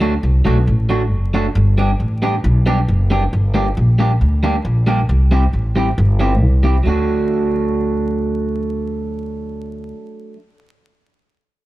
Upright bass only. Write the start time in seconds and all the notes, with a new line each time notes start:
Already playing: D2
0.23 C2
0.46 B1
0.67 A1
1.11 F#1
1.55 G1
2.00 A1
2.44 B1
2.88 F#1
3.33 G1
3.77 A#1
4.21 D2
4.65 A#1
5.09 C2
5.53 A1
5.98 G1
6.42 C2
6.86 D2